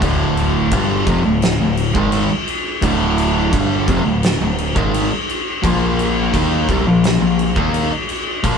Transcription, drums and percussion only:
0.02 kick, crash
0.37 crash
0.71 kick, crash
1.07 kick, crash
1.42 snare, crash
1.77 crash
1.95 kick
2.12 crash
2.48 crash
2.82 kick, crash
3.18 crash
3.53 kick, crash
3.88 kick, crash
4.23 snare, crash
4.58 crash
4.76 kick
4.94 crash
5.29 crash
5.64 kick, crash
5.99 crash
6.34 kick, crash
6.69 kick, crash
7.04 snare, crash
7.39 crash
7.56 kick
7.74 crash
8.09 crash
8.44 kick, crash

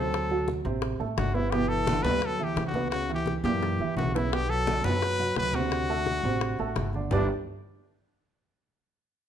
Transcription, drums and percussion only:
0.13 high bongo, high conga
0.30 high bongo, high conga
0.48 high bongo, high conga
0.65 high bongo, high conga
0.82 high bongo, high conga
1.00 high conga
1.18 high bongo, low bongo, high conga
1.35 high bongo, high conga
1.52 high bongo, high conga
1.70 high conga
1.87 high bongo, high conga
2.05 high conga
2.22 high bongo, high conga
2.40 high conga
2.56 high bongo, low bongo, high conga
2.74 high conga
2.91 high bongo, high conga
3.09 high bongo, high conga
3.26 high bongo, high conga
3.44 high bongo, high conga
3.61 high bongo, high conga
3.78 high conga
3.97 low bongo, high conga
4.14 low bongo, high conga
4.32 high bongo, high conga
4.49 high conga
4.67 high bongo, high conga
4.84 high conga
5.02 high bongo, high conga
5.19 high conga
5.36 high bongo, low bongo, high conga
5.53 high conga
5.71 high bongo, high conga
5.88 high bongo, high conga
6.06 high bongo, high conga
6.23 high bongo, high conga
6.41 high bongo, high conga
6.58 high conga
6.76 high bongo, low bongo, high conga
6.93 high bongo, high conga
7.11 low bongo, low conga

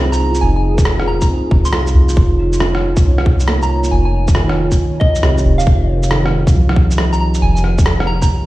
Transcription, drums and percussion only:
0.13 shaker
0.35 shaker
0.78 kick, shaker
0.85 cross-stick
1.00 cross-stick
1.21 kick, shaker
1.51 kick
1.65 shaker
1.73 cross-stick
1.87 shaker
2.09 shaker
2.17 kick
2.53 shaker
2.60 cross-stick
2.75 cross-stick
2.97 kick, shaker
3.18 cross-stick
3.26 kick
3.40 shaker
3.48 cross-stick
3.62 shaker
3.84 shaker
4.28 kick, shaker
4.35 cross-stick
4.49 cross-stick
4.71 kick, shaker
5.01 kick
5.16 shaker
5.23 cross-stick
5.38 shaker
5.60 shaker
5.67 kick
6.03 shaker
6.11 cross-stick
6.26 cross-stick
6.47 kick, shaker
6.69 cross-stick
6.76 kick
6.91 shaker
6.98 cross-stick
7.13 shaker
7.35 shaker
7.56 shaker
7.64 cross-stick
7.78 kick, shaker
7.86 cross-stick
8.00 cross-stick
8.22 kick, shaker

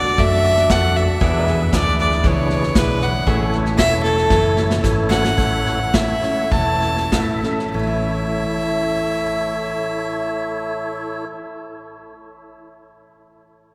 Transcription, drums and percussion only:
0.05 snare
0.18 kick, snare
0.44 snare
0.57 snare
0.70 kick, snare, hi-hat pedal
0.95 snare
1.21 kick, snare
1.47 snare
1.73 kick, snare, hi-hat pedal
1.99 snare
2.11 snare
2.24 kick, snare
2.50 snare
2.63 snare
2.75 kick, snare, hi-hat pedal
3.01 snare
3.27 kick, snare
3.52 snare
3.66 snare
3.78 kick, snare, hi-hat pedal
4.04 snare
4.17 snare
4.30 kick, snare
4.57 snare
4.71 snare
4.84 kick, snare, hi-hat pedal
5.11 snare
5.24 snare
5.38 kick, snare, crash
5.66 snare
5.94 kick, snare, hi-hat pedal
6.22 snare
6.51 kick, snare
6.82 snare
6.97 snare
7.12 kick, snare, hi-hat pedal
7.43 snare
7.59 snare

